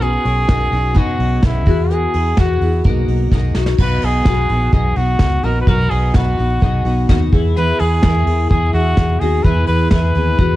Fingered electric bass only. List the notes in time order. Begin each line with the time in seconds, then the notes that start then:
Already playing: B1
0.25 B1
0.49 B1
0.71 B1
1.19 B1
1.43 B1
1.67 E2
2.14 E2
2.38 E2
2.61 E2
2.85 B1
3.08 B1
3.32 B1
3.55 B1
3.79 B1
4.02 B1
4.26 B1
4.50 A#1
4.73 B1
4.97 B1
5.20 C#2
5.44 A#1
5.67 B1
5.91 B1
6.15 B1
6.38 A#1
6.62 B1
6.85 B1
7.09 D#2
7.33 E2
7.80 E2
8.04 E2
8.27 E2
8.51 E2
8.74 E2
8.98 E2
9.21 D#2
9.45 E2
9.68 E2
9.92 E2
10.16 D#2
10.39 E2